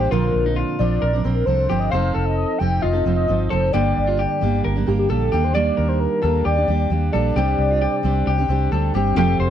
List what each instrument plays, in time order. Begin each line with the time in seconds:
Already playing: steel-string acoustic guitar G3 A#3 D4 G4, clean electric guitar G4, soft synth lead C5
0.11 fingered electric bass A#1, steel-string acoustic guitar A#2 D3 F3 C4 D4 A#4, clean electric guitar F4, soft synth lead A#4
0.34 fingered electric bass A#1
0.46 clean electric guitar D#4
0.56 clean electric guitar F4
0.79 fingered electric bass A#1, steel-string acoustic guitar F3 C4 D4 A#4, soft synth lead D5
1.02 fingered electric bass A#1, clean electric guitar A#4
1.13 steel-string acoustic guitar F3 C4 D4 A#4
1.24 fingered electric bass A#1, steel-string acoustic guitar F3 C4 D4 A#4, soft synth lead A#4
1.35 soft synth lead A#4
1.46 fingered electric bass C2, steel-string acoustic guitar F3 C4 D4 A#4, clean electric guitar A4, soft synth lead C5
1.69 fingered electric bass G1, steel-string acoustic guitar F3 C4 D4 A#4, clean electric guitar G4
1.79 soft synth lead D#5
1.90 fingered electric bass F1, steel-string acoustic guitar F3 C4 D#4, clean electric guitar C5, soft synth lead F5
1.94 steel-string acoustic guitar A4
2.15 fingered electric bass F1, clean electric guitar A4
2.25 soft synth lead D#5
2.37 soft synth lead D#5
2.59 fingered electric bass F1, steel-string acoustic guitar F3 C4 D#4 A4, clean electric guitar G4, soft synth lead G5
2.82 fingered electric bass F1, clean electric guitar F4, soft synth lead D#5
2.93 steel-string acoustic guitar C4 D#4 A4
3.05 fingered electric bass F1, steel-string acoustic guitar F3 C4 D#4 A4
3.16 soft synth lead D#5
3.28 fingered electric bass G1, steel-string acoustic guitar F3 C4 D#4 A4
3.50 fingered electric bass F1, steel-string acoustic guitar F3 C4 D#4 A4, clean electric guitar A4, soft synth lead C5
3.72 fingered electric bass G1, steel-string acoustic guitar G2 D3 G3 A#3 D4 G4, clean electric guitar G4, soft synth lead D5
3.97 fingered electric bass G1
4.07 clean electric guitar F4
4.19 clean electric guitar G4
4.41 fingered electric bass G1, steel-string acoustic guitar G3 A#3 D4 G4
4.65 fingered electric bass G1, clean electric guitar A#4
4.75 steel-string acoustic guitar G3 A#3 D4 G4
4.86 fingered electric bass G1, steel-string acoustic guitar G3 A#3 D4 G4, soft synth lead G4
4.99 soft synth lead G4
5.09 fingered electric bass A#1, steel-string acoustic guitar G3 A#3 D4 G4, soft synth lead A4, clean electric guitar A4
5.31 fingered electric bass D#2, steel-string acoustic guitar G3 A#3 D4 G4, clean electric guitar G4
5.44 soft synth lead C5
5.54 steel-string acoustic guitar D#3 G3 A#3 D4 G4, soft synth lead D5, clean electric guitar D5
5.77 fingered electric bass D#2, clean electric guitar A#4
5.88 soft synth lead C5
6.00 soft synth lead A#4
6.22 fingered electric bass D#2, steel-string acoustic guitar G3 A#3 D4 G4, clean electric guitar A4
6.45 fingered electric bass D#2, clean electric guitar G4, soft synth lead D5
6.57 steel-string acoustic guitar A#3 D4 G4
6.68 fingered electric bass D#2, steel-string acoustic guitar G3 A#3 D4 G4
6.90 fingered electric bass D#2, steel-string acoustic guitar G3 A#3 D4 G4
7.12 fingered electric bass A#1, steel-string acoustic guitar G3 A#3 D4 G4, clean electric guitar A4, soft synth lead D5
7.36 fingered electric bass C2, steel-string acoustic guitar C3 G3 C4 D4 G4, clean electric guitar G4
7.58 fingered electric bass C2
7.71 clean electric guitar F4
7.82 clean electric guitar G4
8.03 fingered electric bass C2, steel-string acoustic guitar G3 C4 D4 G4
8.27 fingered electric bass C2, clean electric guitar G4
8.38 steel-string acoustic guitar C4 D4 G4
8.48 fingered electric bass C2, steel-string acoustic guitar G3 C4 D4 G4
8.72 fingered electric bass D2, steel-string acoustic guitar G3 C4 D4 G4, clean electric guitar A4
8.94 fingered electric bass G1, steel-string acoustic guitar G3 C4 D4 G4, clean electric guitar G4
9.15 fingered electric bass F1, steel-string acoustic guitar F3 A3 C4 F4 G4, reed electric piano C4 F4 G4 A4, clean electric guitar G4
9.39 fingered electric bass F1, clean electric guitar C5